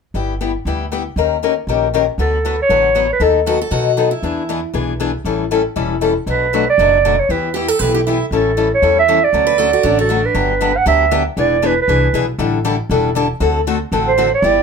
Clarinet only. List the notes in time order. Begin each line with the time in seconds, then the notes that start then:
2.20 A4
2.62 C#5
3.13 B4
3.23 A4
6.30 B4
6.69 D5
7.20 C#5
7.31 B4
8.35 A4
8.74 C#5
8.99 E5
9.24 D5
10.01 A4
10.25 B4
10.77 F#5
10.88 E5
11.39 D5
11.66 B4
11.82 B4
14.08 C5
14.34 D5